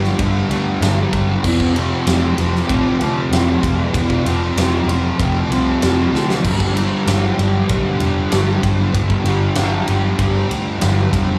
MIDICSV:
0, 0, Header, 1, 4, 480
1, 0, Start_track
1, 0, Tempo, 624350
1, 1116, Time_signature, 4, 2, 24, 8
1, 8754, End_track
2, 0, Start_track
2, 0, Title_t, "Distorted electric guitar"
2, 0, Program_c, 0, 30
2, 0, Note_on_c, 0, 43, 77
2, 0, Note_on_c, 0, 50, 62
2, 0, Note_on_c, 0, 55, 89
2, 134, Note_off_c, 0, 43, 0
2, 142, Note_off_c, 0, 50, 0
2, 143, Note_on_c, 0, 43, 105
2, 151, Note_on_c, 0, 50, 92
2, 159, Note_off_c, 0, 55, 0
2, 168, Note_on_c, 0, 55, 105
2, 374, Note_off_c, 0, 55, 0
2, 383, Note_on_c, 0, 55, 77
2, 403, Note_off_c, 0, 50, 0
2, 412, Note_on_c, 0, 50, 66
2, 615, Note_off_c, 0, 43, 0
2, 624, Note_on_c, 0, 43, 85
2, 625, Note_off_c, 0, 50, 0
2, 635, Note_on_c, 0, 50, 89
2, 639, Note_off_c, 0, 55, 0
2, 648, Note_on_c, 0, 55, 107
2, 857, Note_off_c, 0, 55, 0
2, 866, Note_on_c, 0, 55, 82
2, 883, Note_off_c, 0, 50, 0
2, 892, Note_on_c, 0, 50, 71
2, 1096, Note_off_c, 0, 43, 0
2, 1097, Note_off_c, 0, 55, 0
2, 1110, Note_off_c, 0, 50, 0
2, 1110, Note_on_c, 0, 41, 98
2, 1124, Note_on_c, 0, 48, 101
2, 1134, Note_on_c, 0, 53, 108
2, 1336, Note_off_c, 0, 53, 0
2, 1339, Note_on_c, 0, 53, 73
2, 1356, Note_off_c, 0, 48, 0
2, 1365, Note_on_c, 0, 48, 58
2, 1584, Note_off_c, 0, 41, 0
2, 1586, Note_off_c, 0, 48, 0
2, 1587, Note_on_c, 0, 41, 83
2, 1596, Note_on_c, 0, 48, 92
2, 1601, Note_off_c, 0, 53, 0
2, 1604, Note_on_c, 0, 53, 96
2, 1814, Note_off_c, 0, 53, 0
2, 1817, Note_on_c, 0, 53, 80
2, 1833, Note_off_c, 0, 48, 0
2, 1842, Note_on_c, 0, 48, 65
2, 2050, Note_off_c, 0, 41, 0
2, 2053, Note_on_c, 0, 41, 93
2, 2058, Note_off_c, 0, 48, 0
2, 2067, Note_off_c, 0, 53, 0
2, 2067, Note_on_c, 0, 48, 105
2, 2077, Note_on_c, 0, 53, 109
2, 2285, Note_off_c, 0, 53, 0
2, 2294, Note_on_c, 0, 53, 86
2, 2315, Note_off_c, 0, 48, 0
2, 2324, Note_on_c, 0, 48, 64
2, 2529, Note_off_c, 0, 41, 0
2, 2538, Note_on_c, 0, 41, 84
2, 2541, Note_off_c, 0, 48, 0
2, 2550, Note_on_c, 0, 48, 91
2, 2557, Note_off_c, 0, 53, 0
2, 2566, Note_on_c, 0, 53, 104
2, 2770, Note_off_c, 0, 53, 0
2, 2780, Note_on_c, 0, 53, 78
2, 2799, Note_off_c, 0, 48, 0
2, 2808, Note_on_c, 0, 48, 69
2, 3019, Note_off_c, 0, 41, 0
2, 3029, Note_on_c, 0, 41, 95
2, 3033, Note_off_c, 0, 48, 0
2, 3041, Note_off_c, 0, 53, 0
2, 3042, Note_on_c, 0, 48, 98
2, 3050, Note_on_c, 0, 53, 107
2, 3256, Note_off_c, 0, 53, 0
2, 3265, Note_on_c, 0, 53, 83
2, 3283, Note_off_c, 0, 48, 0
2, 3292, Note_on_c, 0, 48, 56
2, 3498, Note_off_c, 0, 41, 0
2, 3507, Note_on_c, 0, 41, 75
2, 3511, Note_off_c, 0, 48, 0
2, 3520, Note_on_c, 0, 48, 87
2, 3528, Note_off_c, 0, 53, 0
2, 3537, Note_on_c, 0, 53, 91
2, 3747, Note_off_c, 0, 53, 0
2, 3756, Note_on_c, 0, 53, 81
2, 3771, Note_off_c, 0, 48, 0
2, 3780, Note_on_c, 0, 48, 65
2, 3973, Note_off_c, 0, 41, 0
2, 3983, Note_on_c, 0, 41, 94
2, 3988, Note_off_c, 0, 48, 0
2, 3997, Note_on_c, 0, 48, 112
2, 4000, Note_off_c, 0, 53, 0
2, 4009, Note_on_c, 0, 53, 97
2, 4220, Note_off_c, 0, 53, 0
2, 4229, Note_on_c, 0, 53, 74
2, 4246, Note_off_c, 0, 48, 0
2, 4255, Note_on_c, 0, 48, 68
2, 4454, Note_off_c, 0, 41, 0
2, 4463, Note_on_c, 0, 41, 82
2, 4469, Note_off_c, 0, 48, 0
2, 4478, Note_on_c, 0, 48, 91
2, 4482, Note_off_c, 0, 53, 0
2, 4491, Note_on_c, 0, 53, 101
2, 4699, Note_off_c, 0, 53, 0
2, 4708, Note_on_c, 0, 53, 86
2, 4723, Note_off_c, 0, 48, 0
2, 4732, Note_on_c, 0, 48, 72
2, 4934, Note_off_c, 0, 41, 0
2, 4937, Note_on_c, 0, 43, 95
2, 4938, Note_off_c, 0, 53, 0
2, 4950, Note_off_c, 0, 48, 0
2, 4953, Note_on_c, 0, 50, 99
2, 4964, Note_on_c, 0, 55, 113
2, 5180, Note_off_c, 0, 55, 0
2, 5183, Note_on_c, 0, 55, 77
2, 5202, Note_off_c, 0, 50, 0
2, 5211, Note_on_c, 0, 50, 57
2, 5421, Note_off_c, 0, 43, 0
2, 5424, Note_on_c, 0, 43, 87
2, 5426, Note_off_c, 0, 50, 0
2, 5435, Note_on_c, 0, 50, 83
2, 5448, Note_off_c, 0, 55, 0
2, 5451, Note_on_c, 0, 55, 92
2, 5662, Note_off_c, 0, 55, 0
2, 5665, Note_on_c, 0, 55, 83
2, 5683, Note_off_c, 0, 50, 0
2, 5692, Note_on_c, 0, 50, 63
2, 5903, Note_off_c, 0, 43, 0
2, 5906, Note_on_c, 0, 43, 96
2, 5912, Note_off_c, 0, 50, 0
2, 5918, Note_off_c, 0, 55, 0
2, 5921, Note_on_c, 0, 50, 103
2, 5927, Note_on_c, 0, 55, 102
2, 6136, Note_off_c, 0, 55, 0
2, 6145, Note_on_c, 0, 55, 79
2, 6163, Note_off_c, 0, 50, 0
2, 6173, Note_on_c, 0, 50, 64
2, 6376, Note_off_c, 0, 43, 0
2, 6385, Note_on_c, 0, 43, 84
2, 6388, Note_off_c, 0, 50, 0
2, 6398, Note_on_c, 0, 50, 85
2, 6400, Note_off_c, 0, 55, 0
2, 6409, Note_on_c, 0, 55, 103
2, 6618, Note_off_c, 0, 55, 0
2, 6627, Note_on_c, 0, 55, 84
2, 6647, Note_off_c, 0, 50, 0
2, 6657, Note_on_c, 0, 50, 65
2, 6850, Note_off_c, 0, 43, 0
2, 6859, Note_on_c, 0, 43, 92
2, 6865, Note_off_c, 0, 50, 0
2, 6874, Note_off_c, 0, 55, 0
2, 6875, Note_on_c, 0, 50, 101
2, 6883, Note_on_c, 0, 55, 111
2, 7098, Note_off_c, 0, 55, 0
2, 7108, Note_on_c, 0, 55, 81
2, 7123, Note_off_c, 0, 50, 0
2, 7132, Note_on_c, 0, 50, 60
2, 7338, Note_off_c, 0, 43, 0
2, 7348, Note_on_c, 0, 43, 70
2, 7351, Note_off_c, 0, 50, 0
2, 7360, Note_on_c, 0, 50, 83
2, 7364, Note_off_c, 0, 55, 0
2, 7374, Note_on_c, 0, 55, 86
2, 7578, Note_off_c, 0, 55, 0
2, 7587, Note_on_c, 0, 55, 85
2, 7603, Note_off_c, 0, 50, 0
2, 7612, Note_on_c, 0, 50, 68
2, 7811, Note_off_c, 0, 43, 0
2, 7820, Note_off_c, 0, 50, 0
2, 7820, Note_on_c, 0, 43, 97
2, 7830, Note_on_c, 0, 50, 89
2, 7832, Note_off_c, 0, 55, 0
2, 7841, Note_on_c, 0, 55, 99
2, 8056, Note_off_c, 0, 55, 0
2, 8065, Note_on_c, 0, 55, 88
2, 8076, Note_off_c, 0, 50, 0
2, 8085, Note_on_c, 0, 50, 68
2, 8289, Note_off_c, 0, 43, 0
2, 8299, Note_on_c, 0, 43, 89
2, 8303, Note_off_c, 0, 50, 0
2, 8313, Note_on_c, 0, 50, 90
2, 8316, Note_off_c, 0, 55, 0
2, 8325, Note_on_c, 0, 55, 93
2, 8535, Note_off_c, 0, 55, 0
2, 8544, Note_on_c, 0, 55, 76
2, 8561, Note_off_c, 0, 50, 0
2, 8570, Note_on_c, 0, 50, 69
2, 8754, Note_off_c, 0, 43, 0
2, 8754, Note_off_c, 0, 50, 0
2, 8754, Note_off_c, 0, 55, 0
2, 8754, End_track
3, 0, Start_track
3, 0, Title_t, "Picked electric bass"
3, 0, Program_c, 1, 34
3, 0, Note_on_c, 1, 31, 93
3, 91, Note_off_c, 1, 31, 0
3, 144, Note_on_c, 1, 31, 93
3, 327, Note_off_c, 1, 31, 0
3, 379, Note_on_c, 1, 38, 93
3, 564, Note_off_c, 1, 38, 0
3, 620, Note_on_c, 1, 31, 99
3, 805, Note_off_c, 1, 31, 0
3, 867, Note_on_c, 1, 31, 100
3, 1049, Note_off_c, 1, 31, 0
3, 1110, Note_on_c, 1, 29, 98
3, 1470, Note_off_c, 1, 29, 0
3, 1591, Note_on_c, 1, 29, 93
3, 1772, Note_off_c, 1, 29, 0
3, 1832, Note_on_c, 1, 29, 89
3, 2013, Note_off_c, 1, 29, 0
3, 2069, Note_on_c, 1, 33, 94
3, 2251, Note_off_c, 1, 33, 0
3, 2311, Note_on_c, 1, 38, 94
3, 2492, Note_off_c, 1, 38, 0
3, 2550, Note_on_c, 1, 29, 99
3, 2731, Note_off_c, 1, 29, 0
3, 2796, Note_on_c, 1, 29, 97
3, 2976, Note_off_c, 1, 29, 0
3, 3034, Note_on_c, 1, 29, 97
3, 3214, Note_off_c, 1, 29, 0
3, 3274, Note_on_c, 1, 29, 93
3, 3454, Note_off_c, 1, 29, 0
3, 3503, Note_on_c, 1, 29, 95
3, 3688, Note_off_c, 1, 29, 0
3, 3737, Note_on_c, 1, 29, 95
3, 3923, Note_off_c, 1, 29, 0
3, 3995, Note_on_c, 1, 29, 91
3, 4175, Note_off_c, 1, 29, 0
3, 4228, Note_on_c, 1, 36, 96
3, 4411, Note_off_c, 1, 36, 0
3, 4472, Note_on_c, 1, 29, 96
3, 4653, Note_off_c, 1, 29, 0
3, 4706, Note_on_c, 1, 38, 94
3, 4955, Note_on_c, 1, 31, 92
3, 4966, Note_off_c, 1, 38, 0
3, 5314, Note_off_c, 1, 31, 0
3, 5434, Note_on_c, 1, 31, 91
3, 5614, Note_off_c, 1, 31, 0
3, 5676, Note_on_c, 1, 31, 99
3, 5855, Note_off_c, 1, 31, 0
3, 5913, Note_on_c, 1, 35, 91
3, 6094, Note_off_c, 1, 35, 0
3, 6158, Note_on_c, 1, 29, 90
3, 6337, Note_off_c, 1, 29, 0
3, 6397, Note_on_c, 1, 31, 91
3, 6576, Note_off_c, 1, 31, 0
3, 6638, Note_on_c, 1, 31, 88
3, 6817, Note_off_c, 1, 31, 0
3, 6871, Note_on_c, 1, 31, 94
3, 7053, Note_off_c, 1, 31, 0
3, 7106, Note_on_c, 1, 31, 104
3, 7289, Note_off_c, 1, 31, 0
3, 7357, Note_on_c, 1, 31, 96
3, 7536, Note_off_c, 1, 31, 0
3, 7597, Note_on_c, 1, 31, 99
3, 7776, Note_off_c, 1, 31, 0
3, 7834, Note_on_c, 1, 31, 92
3, 8014, Note_off_c, 1, 31, 0
3, 8077, Note_on_c, 1, 38, 100
3, 8256, Note_off_c, 1, 38, 0
3, 8328, Note_on_c, 1, 31, 101
3, 8503, Note_off_c, 1, 31, 0
3, 8557, Note_on_c, 1, 29, 101
3, 8736, Note_off_c, 1, 29, 0
3, 8754, End_track
4, 0, Start_track
4, 0, Title_t, "Drums"
4, 30, Note_on_c, 9, 38, 37
4, 107, Note_off_c, 9, 38, 0
4, 145, Note_on_c, 9, 51, 119
4, 147, Note_on_c, 9, 36, 126
4, 222, Note_off_c, 9, 51, 0
4, 224, Note_off_c, 9, 36, 0
4, 390, Note_on_c, 9, 51, 82
4, 467, Note_off_c, 9, 51, 0
4, 632, Note_on_c, 9, 51, 109
4, 638, Note_on_c, 9, 38, 118
4, 709, Note_off_c, 9, 51, 0
4, 715, Note_off_c, 9, 38, 0
4, 867, Note_on_c, 9, 51, 84
4, 868, Note_on_c, 9, 36, 93
4, 944, Note_off_c, 9, 51, 0
4, 945, Note_off_c, 9, 36, 0
4, 1108, Note_on_c, 9, 49, 103
4, 1109, Note_on_c, 9, 36, 115
4, 1185, Note_off_c, 9, 49, 0
4, 1186, Note_off_c, 9, 36, 0
4, 1230, Note_on_c, 9, 36, 96
4, 1307, Note_off_c, 9, 36, 0
4, 1353, Note_on_c, 9, 51, 82
4, 1430, Note_off_c, 9, 51, 0
4, 1589, Note_on_c, 9, 51, 114
4, 1595, Note_on_c, 9, 38, 126
4, 1666, Note_off_c, 9, 51, 0
4, 1672, Note_off_c, 9, 38, 0
4, 1829, Note_on_c, 9, 51, 84
4, 1906, Note_off_c, 9, 51, 0
4, 1963, Note_on_c, 9, 38, 36
4, 2040, Note_off_c, 9, 38, 0
4, 2072, Note_on_c, 9, 36, 123
4, 2075, Note_on_c, 9, 51, 107
4, 2148, Note_off_c, 9, 36, 0
4, 2152, Note_off_c, 9, 51, 0
4, 2311, Note_on_c, 9, 51, 77
4, 2388, Note_off_c, 9, 51, 0
4, 2556, Note_on_c, 9, 51, 102
4, 2562, Note_on_c, 9, 38, 109
4, 2633, Note_off_c, 9, 51, 0
4, 2639, Note_off_c, 9, 38, 0
4, 2792, Note_on_c, 9, 36, 90
4, 2798, Note_on_c, 9, 51, 90
4, 2869, Note_off_c, 9, 36, 0
4, 2875, Note_off_c, 9, 51, 0
4, 3032, Note_on_c, 9, 36, 111
4, 3035, Note_on_c, 9, 51, 113
4, 3108, Note_off_c, 9, 36, 0
4, 3112, Note_off_c, 9, 51, 0
4, 3152, Note_on_c, 9, 36, 89
4, 3229, Note_off_c, 9, 36, 0
4, 3277, Note_on_c, 9, 51, 96
4, 3354, Note_off_c, 9, 51, 0
4, 3517, Note_on_c, 9, 51, 126
4, 3523, Note_on_c, 9, 38, 120
4, 3593, Note_off_c, 9, 51, 0
4, 3600, Note_off_c, 9, 38, 0
4, 3760, Note_on_c, 9, 51, 87
4, 3837, Note_off_c, 9, 51, 0
4, 3994, Note_on_c, 9, 36, 120
4, 3997, Note_on_c, 9, 51, 120
4, 4071, Note_off_c, 9, 36, 0
4, 4073, Note_off_c, 9, 51, 0
4, 4241, Note_on_c, 9, 51, 86
4, 4318, Note_off_c, 9, 51, 0
4, 4475, Note_on_c, 9, 51, 111
4, 4481, Note_on_c, 9, 38, 110
4, 4552, Note_off_c, 9, 51, 0
4, 4558, Note_off_c, 9, 38, 0
4, 4729, Note_on_c, 9, 38, 74
4, 4806, Note_off_c, 9, 38, 0
4, 4845, Note_on_c, 9, 38, 95
4, 4922, Note_off_c, 9, 38, 0
4, 4956, Note_on_c, 9, 36, 112
4, 4958, Note_on_c, 9, 49, 106
4, 5033, Note_off_c, 9, 36, 0
4, 5035, Note_off_c, 9, 49, 0
4, 5076, Note_on_c, 9, 36, 99
4, 5153, Note_off_c, 9, 36, 0
4, 5202, Note_on_c, 9, 51, 90
4, 5279, Note_off_c, 9, 51, 0
4, 5438, Note_on_c, 9, 51, 121
4, 5444, Note_on_c, 9, 38, 127
4, 5515, Note_off_c, 9, 51, 0
4, 5521, Note_off_c, 9, 38, 0
4, 5682, Note_on_c, 9, 51, 78
4, 5759, Note_off_c, 9, 51, 0
4, 5913, Note_on_c, 9, 51, 117
4, 5917, Note_on_c, 9, 36, 127
4, 5990, Note_off_c, 9, 51, 0
4, 5994, Note_off_c, 9, 36, 0
4, 6152, Note_on_c, 9, 51, 76
4, 6229, Note_off_c, 9, 51, 0
4, 6394, Note_on_c, 9, 51, 109
4, 6400, Note_on_c, 9, 38, 115
4, 6471, Note_off_c, 9, 51, 0
4, 6477, Note_off_c, 9, 38, 0
4, 6637, Note_on_c, 9, 36, 88
4, 6638, Note_on_c, 9, 51, 90
4, 6714, Note_off_c, 9, 36, 0
4, 6715, Note_off_c, 9, 51, 0
4, 6877, Note_on_c, 9, 36, 110
4, 6878, Note_on_c, 9, 51, 102
4, 6954, Note_off_c, 9, 36, 0
4, 6955, Note_off_c, 9, 51, 0
4, 6996, Note_on_c, 9, 36, 91
4, 7073, Note_off_c, 9, 36, 0
4, 7115, Note_on_c, 9, 51, 86
4, 7192, Note_off_c, 9, 51, 0
4, 7345, Note_on_c, 9, 51, 124
4, 7351, Note_on_c, 9, 38, 121
4, 7421, Note_off_c, 9, 51, 0
4, 7428, Note_off_c, 9, 38, 0
4, 7592, Note_on_c, 9, 51, 89
4, 7669, Note_off_c, 9, 51, 0
4, 7832, Note_on_c, 9, 51, 127
4, 7834, Note_on_c, 9, 36, 127
4, 7908, Note_off_c, 9, 51, 0
4, 7911, Note_off_c, 9, 36, 0
4, 8080, Note_on_c, 9, 51, 82
4, 8157, Note_off_c, 9, 51, 0
4, 8312, Note_on_c, 9, 51, 119
4, 8318, Note_on_c, 9, 38, 125
4, 8389, Note_off_c, 9, 51, 0
4, 8395, Note_off_c, 9, 38, 0
4, 8557, Note_on_c, 9, 36, 92
4, 8560, Note_on_c, 9, 51, 93
4, 8634, Note_off_c, 9, 36, 0
4, 8637, Note_off_c, 9, 51, 0
4, 8754, End_track
0, 0, End_of_file